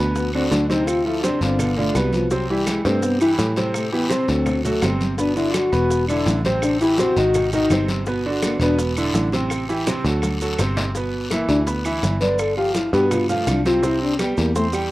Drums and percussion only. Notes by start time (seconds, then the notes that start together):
0.16 high bongo, high conga, long guiro, maracas
0.34 high conga, claves
0.52 high bongo, low bongo, high conga, short guiro, maracas
0.70 high conga, short guiro, maracas
0.87 high bongo, long guiro, claves, maracas
1.05 high bongo, high conga
1.23 high bongo, high conga, short guiro, maracas
1.41 high bongo, high conga, short guiro, maracas
1.59 high bongo, high conga, low conga, long guiro, claves, maracas
1.77 high bongo, high conga, low conga
1.95 high bongo, low bongo, high conga, short guiro, claves, maracas
2.13 high conga, short guiro, maracas
2.31 high bongo, high conga, long guiro, maracas
2.49 high conga
2.67 high bongo, high conga, short guiro, claves, maracas
2.85 short guiro, maracas
3.02 high bongo, high conga, long guiro, maracas
3.21 high conga, claves, maracas
3.39 high bongo, low bongo, high conga, short guiro, maracas
3.56 high conga, short guiro, maracas
3.74 high bongo, high conga, long guiro, claves, maracas
3.93 high bongo, high conga
4.10 high bongo, high conga, short guiro, maracas
4.28 high bongo, high conga, short guiro, maracas
4.46 high bongo, high conga, low conga, long guiro, claves, maracas
4.64 high bongo, high conga, low conga, maracas
4.82 high bongo, low bongo, high conga, short guiro, claves, maracas
5.01 high conga, short guiro, maracas
5.18 high bongo, long guiro, maracas
5.37 high conga, maracas
5.54 high bongo, high conga, short guiro, claves, maracas
5.73 short guiro, maracas
5.90 high bongo, high conga, long guiro, maracas
6.09 high conga, claves, maracas
6.26 high bongo, low bongo, high conga, short guiro, maracas
6.45 high conga, short guiro, maracas
6.62 high bongo, long guiro, claves, maracas
6.81 high bongo, high conga, maracas
6.98 high bongo, high conga, short guiro, maracas
7.17 high conga, short guiro, maracas
7.34 high bongo, high conga, low conga, long guiro, claves, maracas
7.53 high bongo, high conga, low conga, maracas
7.70 high bongo, low bongo, high conga, short guiro, claves, maracas
7.88 high conga, short guiro, maracas
8.06 high bongo, high conga, long guiro, maracas
8.25 high conga
8.42 high bongo, high conga, short guiro, claves, maracas
8.61 short guiro, maracas
8.79 high bongo, high conga, long guiro, maracas
8.97 high conga, claves, maracas
9.14 high bongo, low bongo, high conga, short guiro, maracas
9.32 high conga, short guiro, maracas
9.50 high bongo, long guiro, claves, maracas
9.69 high bongo, high conga, maracas
9.87 high bongo, high conga, short guiro, maracas
10.05 high bongo, high conga, short guiro, maracas
10.22 high bongo, high conga, long guiro, claves, maracas
10.41 high bongo, maracas
10.59 high bongo, low bongo, short guiro, claves, maracas
10.77 low conga, short guiro, maracas
10.95 high bongo, high conga, long guiro, maracas
11.13 high conga
11.31 high bongo, high conga, short guiro, claves, maracas
11.49 short guiro, maracas
11.67 high bongo, high conga, long guiro, maracas
11.85 high conga, claves, maracas
12.03 high bongo, low bongo, high conga, short guiro, maracas
12.21 high conga, short guiro, maracas
12.39 high bongo, high conga, long guiro, claves, maracas
12.57 high bongo, high conga
12.75 high bongo, high conga, short guiro, maracas
12.93 high bongo, high conga, short guiro, maracas
13.11 high bongo, high conga, low conga, long guiro, claves, maracas
13.29 high bongo, high conga, low conga, maracas
13.47 high bongo, low bongo, high conga, short guiro, claves, maracas
13.65 high conga, short guiro, maracas
13.83 high bongo, long guiro, maracas
14.01 high conga
14.19 high bongo, high conga, short guiro, claves, maracas
14.37 short guiro, maracas
14.56 high bongo, high conga, long guiro, maracas
14.73 high conga, claves, maracas